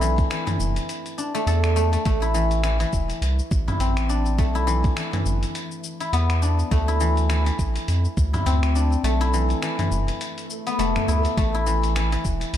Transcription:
Already playing: B1 A3 C4 D4 E4
0.01 E3, cabasa
0.18 kick, closed hi-hat, cabasa
0.30 E3, finger snap, closed hi-hat, cabasa
0.47 E3, closed hi-hat, mid tom, cabasa
0.60 F1, cabasa
0.76 closed hi-hat, cabasa
0.89 closed hi-hat, cabasa
1.06 closed hi-hat, cabasa
1.18 D4, cabasa
1.35 A3, closed hi-hat, cabasa
1.47 E2 A4, closed hi-hat, cabasa
1.64 finger snap, closed hi-hat, cabasa
1.76 A3, cabasa
1.93 A3, closed hi-hat, cabasa
2.05 A1 A3, kick, closed hi-hat, cabasa
2.22 E4, cabasa
2.34 E3, cabasa
2.51 closed hi-hat, cabasa
2.64 E3, finger snap, closed hi-hat, cabasa
2.80 E3, closed hi-hat, cabasa
2.93 E1, kick, cabasa
3.10 closed hi-hat, cabasa
3.21 C2, closed hi-hat, cabasa
3.39 cabasa
3.51 A1, kick, cabasa
3.68 E4, closed hi-hat, mid tom, cabasa
3.80 A1 C4, closed hi-hat, cabasa
3.97 finger snap, closed hi-hat, cabasa
4.09 D4, cabasa
4.26 cabasa
4.38 B1 A3, kick, closed hi-hat, cabasa
4.55 E4, cabasa
4.67 E3, cabasa
4.84 kick, closed hi-hat, cabasa
4.96 E3, finger snap, closed hi-hat, cabasa
5.13 E3, closed hi-hat, mid tom, cabasa
5.26 G1, cabasa
5.43 closed hi-hat, cabasa
5.55 closed hi-hat, cabasa
5.71 cabasa
5.84 cabasa
6.00 E4, closed hi-hat, cabasa
6.13 E2 B3, closed hi-hat, cabasa
6.30 finger snap, closed hi-hat, cabasa
6.42 D4, cabasa
6.59 cabasa
6.71 D2 A3, kick, closed hi-hat, cabasa
6.88 E4, cabasa
7.00 E3, cabasa
7.17 closed hi-hat, cabasa
7.29 E3, finger snap, closed hi-hat, cabasa
7.46 E3, closed hi-hat, cabasa
7.59 A1, kick, cabasa
7.76 closed hi-hat, cabasa
7.88 F2, closed hi-hat, cabasa
8.05 cabasa
8.17 D2, kick, cabasa
8.33 E4, closed hi-hat, mid tom, cabasa
8.46 D2 C4, closed hi-hat, cabasa
8.63 finger snap, closed hi-hat, cabasa
8.75 D4, cabasa
8.92 cabasa
9.04 B1 A3, closed hi-hat, cabasa
9.21 E4, closed hi-hat, cabasa
9.34 E3, cabasa
9.50 closed hi-hat, cabasa
9.62 E3, finger snap, closed hi-hat, cabasa
9.79 E3, closed hi-hat, mid tom, cabasa
9.91 F1, cabasa
10.08 closed hi-hat, cabasa
10.21 closed hi-hat, swell, cabasa
10.38 closed hi-hat, cabasa
10.50 cabasa
10.67 B3, closed hi-hat, cabasa
10.79 F1 A3, closed hi-hat, cabasa
10.96 finger snap, closed hi-hat, mid tom, cabasa
11.08 D2 E4, cabasa
11.25 closed hi-hat, cabasa
11.37 A1 A3, kick, closed hi-hat, cabasa
11.54 E4, cabasa
11.66 E3, cabasa
11.84 closed hi-hat, cabasa
11.96 E3, finger snap, closed hi-hat, cabasa
12.12 E3, closed hi-hat, cabasa
12.25 E1, kick, cabasa
12.41 closed hi-hat, cabasa
12.53 C2, closed hi-hat, cabasa

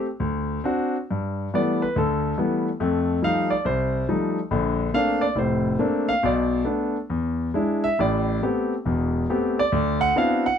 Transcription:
0.20 D2
0.64 C4 D4 F#4
1.11 G2
1.54 E3 G3 A3 B3 D5
1.82 B4
1.96 D2 D3 A4
2.38 E3 G3 A3 B3
2.80 F2 A3
3.22 F3 G3 A3 D#4 F5
3.50 D5
3.65 C2 C5
4.09 F3 G3 A3 D#4
4.51 A#1 D3
4.94 A3 A#3 C4 D4 F5
5.21 D5
5.35 F1 A2 C5
5.79 A3 A#3 C4 D4
6.09 F5
6.23 B1 B2 D5
6.65 A3 B3 D4
7.10 E2
7.54 G#3 D4 E4
7.84 E5
7.99 A1 A2 D5
8.43 A3 B3 C4 G4
8.85 E1 E2
9.30 A3 B3 C4 G4
9.59 D5
9.72 D2
10.01 F#5
10.16 B3 C4 D4 E4 F#4 F5
10.46 F#5

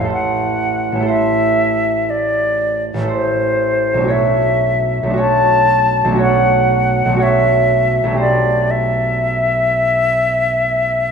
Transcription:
Already playing: A1 A3 F5
0.01 E4 A4
0.08 C5 F#5
0.92 A1 A3
0.99 E4 A4
1.06 C5 E5
2.10 D5
2.94 A1 A3
3.01 E4 A4
3.08 C5
3.12 C5
3.94 B1 A3
4.01 D4 F#4
4.08 C#5 E5
5.03 B1 A3
5.10 D4 F#4
5.17 C#5 A5
6.05 B1 A3
6.12 D4 F#4
6.18 C#5 F#5
7.06 B1 A3
7.13 D4 F#4
7.20 C#5 E5
8.04 B1 A3
8.11 D4 G4
8.17 C5 D5
8.71 E5

